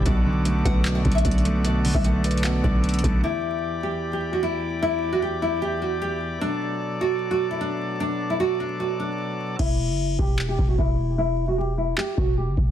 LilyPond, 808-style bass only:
\new Staff \with { instrumentName = "808-style bass" } { \clef bass \time 4/4 \key e \minor \tempo 4 = 151 b,,4. b,,4 b,,8 b,,4~ | b,,8. b,,4.~ b,,16 b,,4 b,,8 | r1 | r1 |
r1 | r1 | e,,8. fis,,8. e,,4 e,,8 e,,4~ | e,,2 r8 e,,8. fis,,16 e,,8 | }